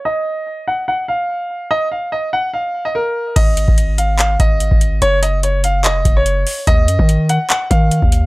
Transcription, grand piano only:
\new Staff \with { instrumentName = "Grand piano" } { \time 4/4 \key aes \dorian \tempo 4 = 145 ees''4. ges''8 ges''8 f''4. | ees''8 f''8 ees''8 ges''8 f''8. ees''16 bes'4 | ees''4. f''8 f''8 ees''4. | des''8 ees''8 des''8 f''8 ees''8. des''4~ des''16 |
ees''4. ges''8 ges''8 f''4. | }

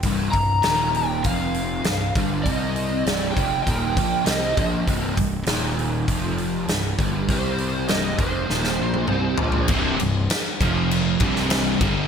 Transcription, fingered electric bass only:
\new Staff \with { instrumentName = "Fingered electric bass" } { \clef bass \time 4/4 \key c \minor \tempo 4 = 99 c,,8 c,,8 ees,,4 f,,4 c,,8 g,,8 | c,4 c,,8 f,,8 ees,,8 bes,,8 c,8 bes,,8 | c,,8 c,,8 ees,,4 f,,4 c,,8 g,,8 | c,4 c,,8 f,,8 ees,,8 bes,,8 c,8 bes,,8 |
c,,8 c,,8 r8 f,,4 c,,4 g,,8 | }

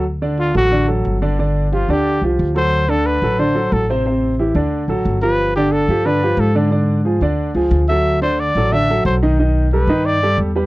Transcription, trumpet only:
\new Staff \with { instrumentName = "Trumpet" } { \time 4/4 \key d \mixolydian \tempo 4 = 180 r4 f'8 fis'4 r4. | r4 f'8 g'4 r4 c''8~ | c''8 a'8 b'4 c''4 a'8 r8 | r2. r8 b'8~ |
b'8 g'8 a'4 b'4 a'8 r8 | r2. r8 e''8~ | e''8 c''8 d''4 e''4 c''8 r8 | r4 b'4 d''4 r4 | }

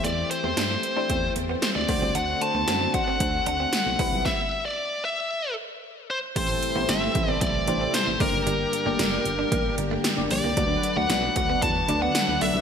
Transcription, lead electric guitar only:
\new Staff \with { instrumentName = "Lead electric guitar" } { \time 4/4 \key d \mixolydian \tempo 4 = 114 d''8 c''2 r8 c''16 d''8. | fis''8 a''4 fis''4 fis''4. | e''8. d''8. e''4 r4 c''8 | c''4 e''4 d''4 c''8 bes'8~ |
bes'2~ bes'8 r4 d''8~ | d''8. fis''8. fis''8 a''8. fis''8. e''8 | }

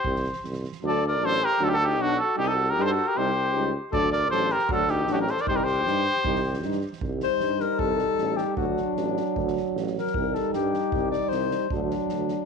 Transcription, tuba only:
\new Staff \with { instrumentName = "Tuba" } { \clef bass \time 2/4 \tempo 4 = 155 c,4 c,4 | d,4 a,,4 | d,4 b,,4 | c,4 g,4 |
c,4 des,4 | d,4 a,,4 | d,4 a,,4 | c,4 g,4 |
c,4 g,4 | c,4 g,4 | c,4 a,,4 | d,4 a,,4 |
d,4 a,,4 | c,4 g,4 | c,4 c,4 | d,4 d,4 | }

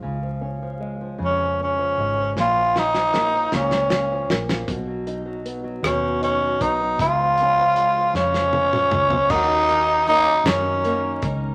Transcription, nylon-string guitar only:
\new Staff \with { instrumentName = "Nylon-string guitar" } { \clef bass \time 6/8 \key cis \mixolydian \tempo 4. = 52 cis16 eis16 cis'16 eis16 gis16 eis16 cis16 eis16 cis'16 eis16 gis16 eis16 | ais,16 eis16 cis'16 eis16 ais16 eis16 ais,16 eis16 cis'16 eis16 ais16 eis16 | b,16 fis16 dis'16 fis16 b16 fis16 b,16 fis16 dis'16 fis16 b16 fis16 | cis16 eis16 cis'16 eis16 gis16 eis16 cis16 eis16 cis'16 eis16 gis16 eis16 |
<dis fis'>8 cis'8 ais8 cis'8 ais8 cis'8 | }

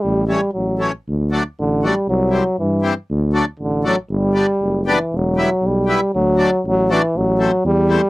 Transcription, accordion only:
\new Staff \with { instrumentName = "Accordion" } { \time 2/4 \key d \mixolydian \tempo 4 = 118 r8 <e a cis'>8 r8 <e a cis'>8 | r8 <fis a d'>8 r8 <fis a d'>8 | r8 <e g c'>8 r8 <e g c'>8 | r8 <fis a d'>8 r8 <fis a d'>8 |
r8 <g b d'>8 r8 <g b d'>8 | r8 <g b e'>8 r8 <g b e'>8 | r8 <fis a d'>8 r8 <fis a d'>8 | r8 <e a c'>8 r8 <e a c'>8 | }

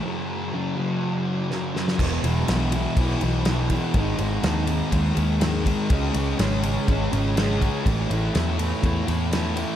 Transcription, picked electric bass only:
\new Staff \with { instrumentName = "Picked electric bass" } { \clef bass \time 4/4 \key e \major \tempo 4 = 123 r1 | e,,8 e,,8 b,,4 b,,8 b,,4. | gis,,8 gis,,8 dis,4 dis,8 dis,4. | cis,8 cis,8 gis,,4 gis,,8 gis,,4. |
a,,8 a,,8 e,4 e,8 e,4. | }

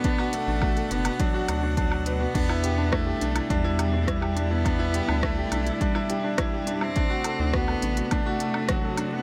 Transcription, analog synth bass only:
\new Staff \with { instrumentName = "Analog synth bass" } { \clef bass \time 4/4 \key e \minor \tempo 4 = 104 r8. a,,8 r16 fis,,16 r8. d,4~ d,16 r16 | e,4~ e,16 r16 b,,16 r16 e,2~ | e,8 r16 d,8 r16 b,,16 r2 r16 | r8. d,8 r16 a,,16 r2 r16 | }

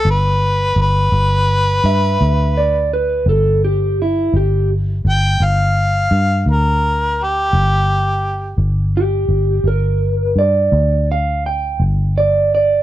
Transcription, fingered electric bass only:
\new Staff \with { instrumentName = "Fingered electric bass" } { \clef bass \time 12/8 \key g \mixolydian \tempo 4. = 56 g,,4 g,,8 g,,4 g,8 d,4. g,,4. | g,,4 g,,8 g,,4 g,8 d,4. g,,4. | g,,4 g,,8 g,,4 g,8 d,4. g,,4. | }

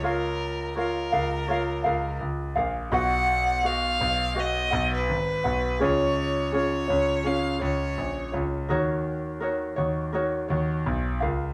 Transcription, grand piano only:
\new Staff \with { instrumentName = "Grand piano" } { \clef bass \time 4/4 \key ees \minor \tempo 4 = 83 des,4. des,4 des,8 des,8 bes,,8 | b,,4. b,,4 b,,8 aes,,8 b,,8 | des,4. des,4 des,8 bes,,8 des,8 | ees,4. ees,4 ees,8 ces,8 des,8 | }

